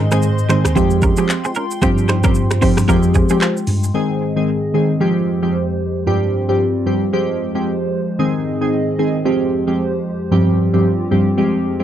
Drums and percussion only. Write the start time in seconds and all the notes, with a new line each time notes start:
0.11 finger snap, cross-stick, shaker
0.22 shaker
0.38 shaker
0.49 finger snap, cross-stick, shaker
0.65 finger snap, cross-stick, shaker
0.76 kick, shaker
0.91 shaker
1.02 kick, shaker
1.17 shaker
1.29 clap, shaker
1.45 shaker
1.55 shaker
1.71 shaker
1.82 finger snap, kick, cross-stick, shaker
1.98 shaker
2.08 finger snap, cross-stick, shaker
2.24 finger snap, kick, cross-stick, shaker
2.35 shaker
2.51 finger snap, cross-stick, shaker
2.62 kick, open hi-hat, shaker
2.77 finger snap, cross-stick, shaker
2.88 kick, shaker
3.03 shaker
3.14 kick, shaker
3.29 shaker
3.41 clap, shaker
3.57 shaker
3.67 open hi-hat, shaker
3.83 shaker